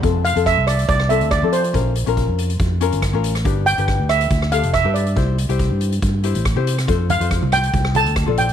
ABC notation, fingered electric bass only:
X:1
M:4/4
L:1/16
Q:"Swing 16ths" 1/4=140
K:F
V:1 name="Fingered electric bass" clef=bass
F,,3 F,,2 C,,3 C,,3 D,,2 F,3 | B,,,3 B,,,2 F,,3 F,,3 G,,,2 A,,,3 | G,,,3 G,,,2 D,,3 D,,3 F,,,2 G,,3 | C,,3 C,,2 G,,3 G,,3 A,,,2 C,3 |
F,,3 F,,2 C,,3 C,,3 D,,2 B,,,3 |]